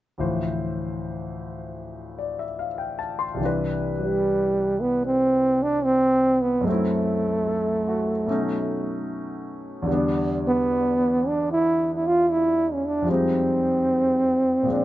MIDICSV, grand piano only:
0, 0, Header, 1, 2, 480
1, 0, Start_track
1, 0, Key_signature, 0, "major"
1, 0, Tempo, 808625
1, 110, Time_signature, 4, 2, 24, 8
1, 4430, Tempo, 798935
1, 8866, End_track
2, 0, Start_track
2, 0, Title_t, "Grand piano"
2, 0, Program_c, 0, 0
2, 106, Note_on_c, 0, 38, 39
2, 112, Note_on_c, 0, 53, 37
2, 113, Note_on_c, 0, 45, 39
2, 117, Note_on_c, 0, 52, 39
2, 121, Note_on_c, 0, 72, 44
2, 231, Control_c, 0, 64, 127
2, 1297, Note_on_c, 0, 74, 35
2, 1420, Note_on_c, 0, 76, 36
2, 1444, Note_off_c, 0, 74, 0
2, 1537, Note_on_c, 0, 77, 40
2, 1586, Note_off_c, 0, 76, 0
2, 1650, Note_on_c, 0, 79, 40
2, 1768, Note_off_c, 0, 77, 0
2, 1773, Note_on_c, 0, 81, 41
2, 1864, Note_off_c, 0, 79, 0
2, 1892, Note_on_c, 0, 84, 41
2, 1923, Note_off_c, 0, 81, 0
2, 1984, Note_on_c, 0, 36, 37
2, 1999, Note_on_c, 0, 48, 34
2, 2008, Note_off_c, 0, 52, 0
2, 2017, Note_on_c, 0, 52, 37
2, 2018, Note_off_c, 0, 38, 0
2, 2022, Note_off_c, 0, 45, 0
2, 2022, Note_off_c, 0, 53, 0
2, 2026, Note_off_c, 0, 72, 0
2, 2028, Control_c, 0, 64, 0
2, 2033, Note_on_c, 0, 62, 35
2, 2050, Note_on_c, 0, 71, 50
2, 2065, Note_off_c, 0, 84, 0
2, 2149, Control_c, 0, 64, 127
2, 3923, Note_on_c, 0, 42, 45
2, 3933, Note_off_c, 0, 36, 0
2, 3938, Note_on_c, 0, 54, 43
2, 3941, Note_off_c, 0, 48, 0
2, 3950, Note_off_c, 0, 52, 0
2, 3956, Note_on_c, 0, 57, 41
2, 3958, Note_off_c, 0, 62, 0
2, 3959, Control_c, 0, 64, 0
2, 3966, Note_off_c, 0, 71, 0
2, 3971, Note_on_c, 0, 60, 45
2, 3990, Note_on_c, 0, 64, 50
2, 4051, Control_c, 0, 64, 127
2, 4434, Note_on_c, 0, 69, 36
2, 4681, Note_on_c, 0, 66, 34
2, 4815, Note_off_c, 0, 69, 0
2, 4900, Note_off_c, 0, 42, 0
2, 4907, Note_off_c, 0, 54, 0
2, 4912, Note_on_c, 0, 47, 46
2, 4914, Note_off_c, 0, 57, 0
2, 4916, Note_on_c, 0, 54, 37
2, 4923, Control_c, 0, 64, 0
2, 4923, Note_on_c, 0, 57, 42
2, 4924, Note_off_c, 0, 60, 0
2, 4933, Note_off_c, 0, 64, 0
2, 4933, Note_on_c, 0, 61, 43
2, 4939, Note_on_c, 0, 63, 47
2, 5014, Note_off_c, 0, 66, 0
2, 5031, Control_c, 0, 64, 127
2, 5848, Note_on_c, 0, 40, 47
2, 5863, Note_on_c, 0, 50, 43
2, 5873, Note_off_c, 0, 47, 0
2, 5876, Note_off_c, 0, 54, 0
2, 5878, Note_on_c, 0, 55, 42
2, 5879, Note_off_c, 0, 57, 0
2, 5881, Control_c, 0, 64, 0
2, 5884, Note_off_c, 0, 61, 0
2, 5887, Note_off_c, 0, 63, 0
2, 5899, Note_on_c, 0, 59, 42
2, 5914, Note_on_c, 0, 62, 47
2, 5989, Control_c, 0, 64, 127
2, 7769, Note_on_c, 0, 41, 41
2, 7776, Note_off_c, 0, 40, 0
2, 7781, Note_on_c, 0, 53, 38
2, 7784, Note_off_c, 0, 50, 0
2, 7788, Note_off_c, 0, 55, 0
2, 7797, Note_on_c, 0, 55, 40
2, 7798, Control_c, 0, 64, 0
2, 7801, Note_off_c, 0, 59, 0
2, 7809, Note_off_c, 0, 62, 0
2, 7817, Note_on_c, 0, 56, 41
2, 7830, Note_on_c, 0, 63, 46
2, 7909, Control_c, 0, 64, 127
2, 8734, Note_on_c, 0, 46, 41
2, 8740, Note_off_c, 0, 53, 0
2, 8741, Note_off_c, 0, 41, 0
2, 8749, Note_on_c, 0, 53, 37
2, 8753, Note_off_c, 0, 56, 0
2, 8755, Note_off_c, 0, 55, 0
2, 8759, Control_c, 0, 64, 0
2, 8762, Note_on_c, 0, 56, 36
2, 8772, Note_off_c, 0, 63, 0
2, 8777, Note_on_c, 0, 60, 35
2, 8796, Note_on_c, 0, 62, 42
2, 8860, Control_c, 0, 64, 127
2, 8866, Note_off_c, 0, 46, 0
2, 8866, Note_off_c, 0, 53, 0
2, 8866, Note_off_c, 0, 56, 0
2, 8866, Note_off_c, 0, 60, 0
2, 8866, Note_off_c, 0, 62, 0
2, 8866, End_track
0, 0, End_of_file